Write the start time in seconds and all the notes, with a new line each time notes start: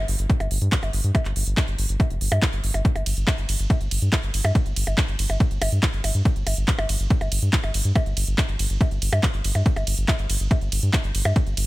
0.08 G1, open hi-hat
0.19 G1, closed hi-hat
0.30 kick, closed hi-hat
0.40 G1, closed hi-hat, percussion blips
0.51 G1, open hi-hat
0.61 G2, closed hi-hat
0.72 kick, clap, closed hi-hat
0.83 G1, closed hi-hat, percussion blips
0.93 G1, open hi-hat
1.04 G2, closed hi-hat
1.15 kick, closed hi-hat, percussion blips
1.25 G1, clap, closed hi-hat
1.36 G1, open hi-hat
1.47 G1, closed hi-hat
1.57 kick, clap, closed hi-hat, percussion blips
1.68 G1, closed hi-hat
1.79 G1, open hi-hat
1.89 G1, closed hi-hat
2.00 kick, closed hi-hat, percussion blips
2.10 F1, closed hi-hat
2.21 G1, open hi-hat
2.32 G2, closed hi-hat, percussion blips
2.42 kick, clap, closed hi-hat
2.53 G1, closed hi-hat
2.64 G1, open hi-hat
2.74 G1, closed hi-hat, percussion blips
2.85 kick, closed hi-hat
2.96 G1, closed hi-hat, percussion blips
3.06 G1, open hi-hat, ride
3.17 G1, closed hi-hat
3.27 kick, clap, closed hi-hat, percussion blips
3.38 G1, closed hi-hat
3.49 G1, open hi-hat, ride
3.59 G1, closed hi-hat
3.70 kick, closed hi-hat, percussion blips
3.81 G1, closed hi-hat
3.91 G1, open hi-hat, ride
4.02 G2, closed hi-hat
4.13 kick, clap, closed hi-hat, percussion blips
4.23 G1, closed hi-hat
4.34 G1, open hi-hat, ride
4.45 G2, closed hi-hat, percussion blips
4.55 kick, closed hi-hat
4.66 G1, closed hi-hat
4.76 G1, open hi-hat, ride
4.87 G1, closed hi-hat, percussion blips
4.98 kick, clap, closed hi-hat
5.08 G1, closed hi-hat
5.19 G1, open hi-hat, ride
5.30 G1, closed hi-hat, percussion blips
5.40 kick, closed hi-hat
5.51 G1, closed hi-hat
5.62 G1, open hi-hat, ride, percussion blips
5.72 G2, closed hi-hat
5.83 kick, clap, closed hi-hat
5.93 G1, closed hi-hat
6.04 G1, open hi-hat, ride, percussion blips
6.15 G2, closed hi-hat
6.25 kick, closed hi-hat
6.36 G1, closed hi-hat
6.47 G1, open hi-hat, ride, percussion blips
6.57 G1, closed hi-hat
6.68 kick, clap, closed hi-hat
6.79 G1, closed hi-hat, percussion blips
6.89 G1, open hi-hat, ride
7.00 G1, closed hi-hat
7.10 kick, closed hi-hat
7.21 G1, closed hi-hat, percussion blips
7.32 G1, open hi-hat, ride
7.42 G2, closed hi-hat
7.53 kick, clap, closed hi-hat
7.64 G1, closed hi-hat, percussion blips
7.74 G1, open hi-hat, ride
7.85 G2, closed hi-hat
7.96 kick, closed hi-hat, percussion blips
8.06 G1, closed hi-hat
8.17 G1, open hi-hat, ride
8.27 G1, closed hi-hat
8.38 kick, clap, closed hi-hat, percussion blips
8.49 G1, closed hi-hat
8.59 G1, open hi-hat, ride
8.70 G1, closed hi-hat
8.81 kick, closed hi-hat, percussion blips
8.91 G1, closed hi-hat
9.02 G1, open hi-hat, ride
9.13 G2, closed hi-hat, percussion blips
9.23 kick, clap, closed hi-hat
9.34 G1, closed hi-hat
9.44 G1, open hi-hat, ride
9.55 G2, closed hi-hat, percussion blips
9.66 kick, closed hi-hat
9.76 G1, closed hi-hat, percussion blips
9.87 G1, open hi-hat, ride
9.98 G1, closed hi-hat
10.08 kick, clap, closed hi-hat, percussion blips
10.19 G1, closed hi-hat
10.30 G1, open hi-hat, ride
10.40 G1, closed hi-hat
10.51 kick, closed hi-hat, percussion blips
10.61 G1, closed hi-hat
10.72 G1, open hi-hat, ride
10.83 G2, closed hi-hat
10.93 kick, clap, closed hi-hat, percussion blips
11.04 G1, closed hi-hat
11.15 G1, open hi-hat, ride
11.25 G2, closed hi-hat, percussion blips
11.36 kick, closed hi-hat
11.47 G1, closed hi-hat
11.57 G1, open hi-hat, ride